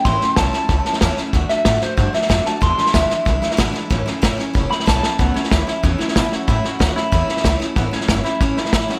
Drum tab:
HH |----p-------p---|----p-------p---|----p-------p---|----p-------p---|
SD |o-o-o-o-o-ooo-o-|o-o-o-o-o-ooo-o-|o-ooo-o-o-ooo-o-|o-o-o-o-o-ooo-o-|
BD |o---o---o---o---|o---o---o---o---|o---o---o---o---|o---o---o---o---|

HH |----p-------p---|----p-------p---|----p-------p---|
SD |o-ooo-o-o-ooo-o-|o-o-o-o-o-ooo-o-|o-ooo-o-o-ooo-o-|
BD |o---o---o---o---|o---o---o---o---|o---o---o---o---|